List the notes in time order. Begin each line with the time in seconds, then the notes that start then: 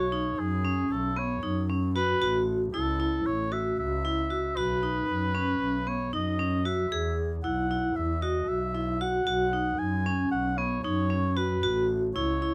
Already playing: B1 C#5
0.12 D#4
0.38 F#2 G#4
0.65 C#4
0.90 B1 A4
1.17 B3 C#5
1.43 F#2 D#4
1.69 C#4
1.95 F#4 B4
2.21 A1 F#4
2.73 C#2 E4 A4
3.00 E4
3.26 A1 C#5
3.52 F#4 E5
3.78 C#2 E5
4.05 E4
4.31 F#4
4.57 B1 F#4 B4
4.83 D#4
5.08 F#2
5.35 C#4
5.61 B1
5.87 B3 C#5
6.13 F#2 D#4 D#5
6.39 C#4
6.65 F#4 E5
6.91 E2 G#4
7.44 B1 E4 F#5
7.71 E4
7.96 E2 E5
8.22 F#4 D#5
8.48 B1 E5
8.75 E4
9.01 F#4 F#5
9.27 B1 F#4
9.53 D#4
9.79 F#2 G#5
10.06 C#4
10.31 B1 F#5
10.58 B3 C#5
10.83 F#2 D#4 C#5
11.10 C#4
11.37 F#4 B4
11.63 A1 F#4
12.15 C#2 E4 C#5
12.42 E4